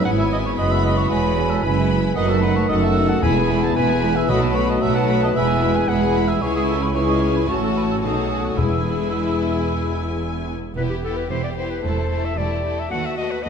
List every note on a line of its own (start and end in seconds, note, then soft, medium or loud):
0.05 0.57 G#1 medium
0.05 0.58 G#2 medium
0.05 0.40 E3 soft
0.05 2.00 G#3 medium
0.05 1.09 B3 soft
0.05 2.00 E4 medium
0.05 0.59 E4 soft
0.05 0.40 C#5 soft
0.05 0.11 F#5 medium
0.05 0.58 G#5 medium
0.05 0.57 B5 medium
0.19 0.25 E5 medium
0.32 0.38 D#5 medium
0.46 0.52 C#5 medium
0.58 1.10 F#1 medium
0.58 1.10 F#2 medium
0.58 1.13 G#3 soft
0.58 1.64 F#4 medium
0.58 1.08 B4 medium
0.58 0.73 D#5 medium
0.58 1.10 B5 medium
0.71 0.84 E5 medium
0.84 0.99 D#5 medium
0.97 1.09 C#5 medium
1.09 1.63 E1 medium
1.09 1.63 E2 medium
1.09 1.65 F#3 soft
1.09 1.63 G#3 soft
1.09 1.51 B4 medium
1.09 2.14 B4 medium
1.09 2.15 G#5 medium
1.09 1.63 B5 medium
1.50 1.65 A4 medium
1.63 2.16 F#1 medium
1.63 2.16 F#2 medium
1.63 2.16 E3 medium
1.63 2.16 G#3 soft
1.63 2.16 E4 medium
1.63 1.98 B4 medium
1.63 2.16 B5 medium
2.16 2.64 F#1 medium
2.16 2.64 F#2 medium
2.16 2.69 D#3 medium
2.16 2.29 F#3 soft
2.16 3.19 A3 medium
2.16 2.29 D#4 medium
2.16 3.19 D#4 medium
2.16 2.71 B4 medium
2.16 2.31 D#5 medium
2.16 3.23 F#5 medium
2.16 2.29 F#5 medium
2.29 2.43 A3 soft
2.29 2.43 F#4 soft
2.29 2.41 A4 medium
2.29 2.43 A5 soft
2.41 2.57 F#3 soft
2.41 2.56 D#4 soft
2.41 2.58 B4 medium
2.41 2.56 F#5 medium
2.56 2.70 A3 soft
2.56 2.70 F#4 soft
2.56 2.68 C#5 medium
2.56 2.70 A5 soft
2.69 3.17 F#1 medium
2.69 3.17 F#2 medium
2.69 3.24 D#3 medium
2.69 2.82 F#3 medium
2.69 2.82 D#4 soft
2.69 3.25 A4 medium
2.69 2.75 D#5 medium
2.69 2.82 F#5 medium
2.82 2.96 A3 soft
2.82 2.97 F#4 medium
2.82 3.08 E5 medium
2.82 2.96 A5 soft
2.96 3.09 F#3 soft
2.96 3.10 D#4 medium
2.96 3.09 F#5 medium
3.09 3.23 A3 soft
3.09 3.23 F#4 soft
3.09 3.22 F#5 medium
3.09 3.23 A5 medium
3.22 3.70 E1 medium
3.22 3.98 E2 medium
3.22 3.70 E2 medium
3.22 4.28 E3 medium
3.22 3.35 G#3 medium
3.22 4.27 B3 medium
3.22 4.29 E4 medium
3.22 3.36 E4 medium
3.22 3.77 G#4 medium
3.22 3.65 G#5 medium
3.22 3.35 B5 soft
3.22 3.76 B5 medium
3.36 3.50 B3 medium
3.36 3.50 G#4 soft
3.36 3.49 G#5 soft
3.49 3.62 G#3 soft
3.49 3.63 E4 medium
3.49 3.62 B5 medium
3.63 3.76 B3 soft
3.63 3.76 G#4 medium
3.63 3.76 G#5 soft
3.63 3.76 A5 medium
3.75 4.22 E1 medium
3.75 4.22 E2 medium
3.75 3.88 G#3 soft
3.75 3.88 E4 soft
3.75 4.81 B4 medium
3.75 4.28 G#5 medium
3.75 4.17 G#5 medium
3.75 3.88 B5 medium
3.89 4.02 B3 medium
3.89 4.03 G#4 medium
3.89 4.02 G#5 medium
4.02 4.15 G#3 medium
4.02 4.16 E4 soft
4.02 4.15 B5 soft
4.15 4.28 B3 soft
4.15 4.28 G#4 medium
4.15 4.30 E5 medium
4.15 4.28 G#5 soft
4.28 4.76 B1 medium
4.28 4.76 B2 medium
4.28 5.05 B2 medium
4.28 4.81 F#3 medium
4.28 4.41 A3 medium
4.28 5.35 A3 medium
4.28 4.41 F#4 medium
4.28 5.36 F#4 medium
4.28 4.42 D#5 medium
4.28 4.40 B5 medium
4.28 4.81 B5 medium
4.41 4.55 B3 medium
4.41 4.55 D#4 soft
4.41 4.56 B4 medium
4.41 4.55 A5 soft
4.55 4.68 A3 soft
4.55 4.69 F#4 soft
4.55 4.68 C#5 medium
4.55 4.68 B5 medium
4.68 4.82 B3 soft
4.68 4.82 D#4 medium
4.68 4.83 D#5 medium
4.68 4.82 A5 soft
4.81 5.29 B1 medium
4.81 5.29 B2 medium
4.81 5.37 F#3 medium
4.81 4.94 A3 soft
4.81 4.94 F#4 medium
4.81 5.90 B4 medium
4.81 4.95 E5 medium
4.81 5.36 A5 medium
4.81 4.94 B5 soft
4.94 5.09 B3 soft
4.94 5.08 D#4 medium
4.94 5.21 F#5 medium
4.94 5.09 A5 soft
5.08 5.22 A3 soft
5.08 5.22 F#4 soft
5.08 5.22 B5 soft
5.21 5.35 B3 soft
5.21 5.35 D#4 soft
5.21 5.29 D#5 medium
5.21 5.35 A5 soft
5.34 5.82 E1 medium
5.34 5.82 E2 medium
5.34 5.89 E3 medium
5.34 5.48 G#3 medium
5.34 6.42 G#3 medium
5.34 5.47 E4 medium
5.34 6.41 E4 medium
5.34 5.77 E5 medium
5.34 5.88 G#5 medium
5.34 5.48 B5 soft
5.48 5.62 B3 soft
5.48 5.62 G#4 soft
5.48 5.62 G#5 soft
5.61 5.75 G#3 medium
5.61 5.75 E4 medium
5.61 5.75 B5 medium
5.74 5.89 B3 soft
5.74 5.88 G#4 soft
5.74 5.88 G#5 soft
5.74 5.90 G#5 medium
5.88 6.36 E1 medium
5.88 6.35 E2 medium
5.88 6.26 E3 medium
5.88 6.01 G#3 soft
5.88 6.01 E4 medium
5.88 6.41 G#4 medium
5.88 6.30 F#5 medium
5.88 6.01 B5 soft
5.88 6.42 B5 medium
6.02 6.15 B3 soft
6.02 6.15 G#4 soft
6.02 6.15 G#5 soft
6.15 6.29 G#3 soft
6.15 6.28 E4 soft
6.15 6.29 B5 soft
6.28 6.42 B3 soft
6.28 6.41 G#4 soft
6.28 6.43 E5 medium
6.28 6.41 G#5 medium
6.42 7.45 C#2 medium
6.42 6.91 E3 medium
6.42 6.92 G#3 medium
6.42 6.92 C#4 soft
6.42 6.92 E4 medium
6.42 6.92 G#4 medium
6.42 6.55 C#5 medium
6.42 6.92 G#5 medium
6.42 6.92 C#6 medium
6.56 6.62 G#4 medium
6.68 6.84 A4 medium
6.83 6.95 B4 medium
6.95 7.48 E3 medium
6.95 7.48 G#3 soft
6.95 7.48 C#4 soft
6.95 7.48 E4 medium
6.95 7.48 G#4 medium
6.95 7.01 C#5 medium
6.95 7.48 G#5 medium
6.95 7.25 C#6 medium
7.10 7.23 D#5 medium
7.22 7.38 C#5 medium
7.37 7.48 B4 medium
7.48 8.03 A1 medium
7.48 8.03 A2 medium
7.48 8.01 F#3 soft
7.48 8.02 A3 soft
7.48 8.02 C#4 soft
7.48 8.01 F#4 medium
7.48 8.02 F#4 soft
7.48 7.88 A4 soft
7.48 7.55 C#5 medium
7.48 8.02 A5 soft
7.48 8.02 C#6 soft
7.64 7.70 A4 medium
7.77 7.83 B4 medium
7.91 7.97 A4 medium
8.03 8.58 B1 soft
8.03 8.58 B2 soft
8.03 8.59 F#3 soft
8.03 8.57 A3 soft
8.03 8.31 D#4 soft
8.03 8.58 D#4 soft
8.03 8.57 F#4 soft
8.03 8.46 G#4 medium
8.03 8.60 A4 soft
8.03 8.57 A5 soft
8.03 8.58 D#6 soft
8.31 8.39 C#4 soft
8.45 8.59 F#4 soft
8.57 10.53 E1 soft
8.57 9.36 E2 medium
8.57 10.53 E2 soft
8.57 10.50 E3 soft
8.57 10.51 G#3 soft
8.57 10.53 B3 soft
8.57 10.22 E4 medium
8.57 10.57 E4 soft
8.57 10.50 E4 soft
8.57 10.50 G#4 soft
8.57 10.52 G#5 soft
8.57 10.50 E6 soft
10.77 11.22 E1 medium
10.77 11.22 E2 soft
10.77 11.03 B3 soft
10.77 11.03 E4 soft
10.77 11.80 G4 soft
10.77 11.03 G4 soft
10.77 10.83 B4 medium
10.90 10.96 G4 soft
11.02 11.29 B3 soft
11.02 11.29 E4 soft
11.02 11.30 G4 soft
11.02 11.18 A4 medium
11.17 11.30 B4 soft
11.30 11.75 E1 soft
11.30 11.75 E2 soft
11.30 11.55 B3 soft
11.30 11.55 E4 soft
11.30 11.56 G4 soft
11.30 11.43 C5 medium
11.43 11.49 D5 soft
11.56 11.83 B3 soft
11.56 11.82 E4 soft
11.56 11.84 G4 soft
11.56 11.72 C5 medium
11.71 11.86 B4 soft
11.83 12.29 E1 soft
11.83 12.29 E2 soft
11.83 12.09 A3 soft
11.83 12.09 E4 soft
11.83 12.38 A4 soft
11.83 12.10 A4 soft
11.83 12.26 C5 medium
12.10 12.37 A3 soft
12.10 12.37 E4 soft
12.10 12.38 A4 soft
12.25 12.39 E5 medium
12.38 12.83 E1 soft
12.38 12.83 E2 soft
12.38 12.64 A3 soft
12.38 12.64 E4 soft
12.38 12.91 G4 soft
12.38 12.64 A4 soft
12.38 12.81 D5 medium
12.65 12.89 A3 soft
12.65 12.91 E4 soft
12.65 12.91 A4 soft
12.80 12.91 E5 soft
12.90 13.36 D#2 soft
12.90 13.17 A3 soft
12.90 13.17 F#4 soft
12.90 13.45 F#4 soft
12.90 13.17 B4 soft
12.90 13.07 F#5 medium
13.06 13.17 E5 medium
13.18 13.44 A3 soft
13.18 13.43 F#4 soft
13.18 13.43 B4 soft
13.18 13.33 D#5 medium
13.31 13.45 B4 medium
13.43 13.49 D#2 soft
13.43 13.49 A3 soft
13.43 13.49 F#4 soft
13.43 13.49 B4 soft
13.43 13.49 D#5 medium